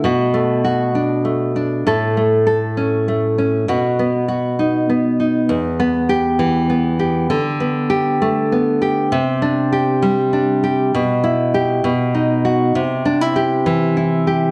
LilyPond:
\new Staff \with { instrumentName = "Nylon-string guitar" } { \time 6/8 \key e \minor \tempo 4. = 66 <b, fis'>8 a8 fis'8 d'8 a8 d'8 | <a, a'>8 a8 a'8 cis'8 a8 cis'8 | <b, fis'>8 b8 fis'8 dis'8 b8 dis'8 | e,8 b8 g'8 e8 b8 g'8 |
d8 b8 g'8 a8 b8 g'8 | c8 d'8 g'8 g8 d'8 g'8 | b,8 e'8 g'8 b,8 dis'8 fis'8 | c8 d'16 e'16 g'8 e8 e'8 g'8 | }